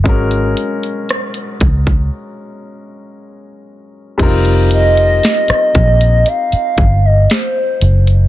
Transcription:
<<
  \new Staff \with { instrumentName = "Soft synth lead" } { \time 4/4 \key f \phrygian \tempo 4 = 58 r1 | r8 ees''4. f''8. ees''16 c''8. r16 | }
  \new Staff \with { instrumentName = "Grand piano" } { \time 4/4 \key f \phrygian <aes des' ges' bes'>1 | <g c' ees' f' bes'>1 | }
  \new Staff \with { instrumentName = "Fingered electric bass" } { \clef bass \time 4/4 \key f \phrygian aes,,8 r4 des,8 r2 | f,,4 r8 bes,,8 r8 g,,8 r8 ges,,8 | }
  \new DrumStaff \with { instrumentName = "Drums" } \drummode { \time 4/4 <hh bd>16 hh16 hh16 hh16 <hh ss>16 hh16 <hh bd>16 <hh bd>16 r4 r4 | <cymc hh bd>16 hh16 hh16 hh16 <hh sn>16 <hh ss>16 <hh bd>16 hh16 hh16 hh16 <hh bd>8 <hh sn>8 hh16 hh16 | }
>>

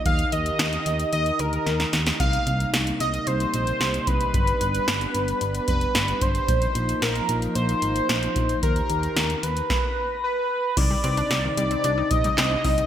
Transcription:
<<
  \new Staff \with { instrumentName = "Analog synth lead" } { \time 4/4 \key c \minor \tempo 4 = 112 f''8 ees''4. ees''8 bes'4 r8 | f''4 r8 ees''8 c''4. b'8~ | b'2~ b'8 b'4 c''8~ | c''4 bes'4 c''2 |
bes'4. b'4. b'4 | d''4. d''4 ees''4. | }
  \new Staff \with { instrumentName = "Synth arpeggio sound" } { \time 4/4 \key c \minor r1 | r1 | r1 | r1 |
r1 | ees16 g16 c'16 d'16 ees'16 ees16 g16 c'16 d'16 ees'16 r16 g16 c'16 d'16 ees'16 ees16 | }
  \new Staff \with { instrumentName = "Analog synth pad" } { \time 4/4 \key c \minor << { <ees g' bes'>1 | <c bes>1 | <b d'>1 | <bes ees'>1 |
<ees g' bes'>2 r2 | <c ees'>1 | } \\ { ees'1 | g1~ | g1 | f1 |
r1 | c'1 | } >> }
  \new Staff \with { instrumentName = "FM bass" } { \clef bass \time 4/4 \key c \minor ees,8 ees,8 ees,8 ees,8 ees,8 d,8 ees,8 ees,8 | c,8 c,8 c,8 c,8 c,8 bes,,8 c,8 c,8 | g,,8 g,,8 g,,8 g,,8 g,,8 f,,8 g,,8 g,,8 | bes,,8 bes,,8 bes,,8 bes,,8 bes,,8 aes,,8 bes,,8 bes,,8 |
ees,8 ees,8 ees,8 ees,8 r2 | c,8 c,8 c,8 c,8 c,8 bes,,8 c,8 c,8 | }
  \new DrumStaff \with { instrumentName = "Drums" } \drummode { \time 4/4 <hh bd>16 hh16 hh16 hh16 <hh sn>16 hh16 hh16 hh16 hh16 hh16 hh16 hh16 <hh sn>16 <hh sn>16 <hh sn>16 <hh sn>16 | <hh bd>16 hh16 hh16 hh16 <hh sn>16 hh16 hh16 hh16 hh16 hh16 hh16 hh16 <hh sn>16 hh16 <hh bd>16 hh16 | <hh bd>16 hh16 hh16 hh16 <hh sn>16 hh16 hh16 hh16 hh16 hh16 <hh bd>16 hh16 <hh sn>16 hh16 <hh bd>16 hh16 | <hh bd>16 hh16 hh16 hh16 <hh sn>16 hh16 hh16 hh16 hh16 hh16 hh16 hh16 <hh sn>16 hh16 <hh bd>16 hh16 |
<hh bd>16 hh16 hh16 hh16 <hh sn>16 hh16 hh16 hh16 <bd sn>4 r4 | <cymc hh bd>8 hh16 hh16 <hh sn>8 hh16 hh16 hh8 <hh bd>16 hh16 <hc hh sn>8 <hho bd>16 hh16 | }
>>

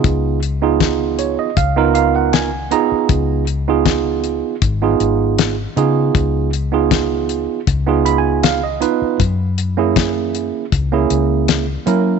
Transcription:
<<
  \new Staff \with { instrumentName = "Tine electric piano" } { \time 4/4 \key des \mixolydian \tempo 4 = 79 << { r4. des''16 ees''16 f''8 f''16 ges''16 aes''8 bes''8 | r1 | r2 \tuplet 3/2 { r8. ces'''16 aes''8 } f''16 ees''8. | r1 | } \\ { <ces' ees' f' aes'>8 r16 <ces' ees' f' aes'>4~ <ces' ees' f' aes'>16 r16 <ces' ees' f' bes'>4 r16 <ces' ees' f' aes'>8~ | <ces' ees' f' aes'>8 r16 <ces' ees' f' aes'>4~ <ces' ees' f' aes'>16 r16 <ces' ees' f' aes'>4 r16 <ces' ees' f' aes'>8~ | <ces' ees' f' aes'>8 r16 <ces' ees' f' aes'>4~ <ces' ees' f' aes'>16 r16 <ces' ees' f' aes'>4 r16 <ces' ees' f' ces''>8 | r8. <bes des' fes' aes'>4~ <bes des' fes' aes'>16 r16 <bes des' fes' aes'>4 r16 <bes des' fes' bes'>8 | } >> }
  \new Staff \with { instrumentName = "Fingered electric bass" } { \clef bass \time 4/4 \key des \mixolydian des,2 des,4.~ des,16 r16 | des,2 aes,,8 aes,,4 des8 | des,2 des,4.~ des,16 r16 | ges,2 des,8 des,4 ges8 | }
  \new DrumStaff \with { instrumentName = "Drums" } \drummode { \time 4/4 <hh bd>8 hh8 <hh bd sn>8 hh8 <hh bd>8 hh8 <hh sn>8 hh8 | <hh bd>8 hh8 <hh bd sn>8 hh8 <hh bd>8 hh8 <hh sn>8 hh8 | <hh bd>8 hh8 <hh bd sn>8 hh8 <hh bd>8 hh8 <hh sn>8 hh8 | <hh bd>8 hh8 <hh bd sn>8 hh8 <hh bd>8 hh8 <hh sn>8 hh8 | }
>>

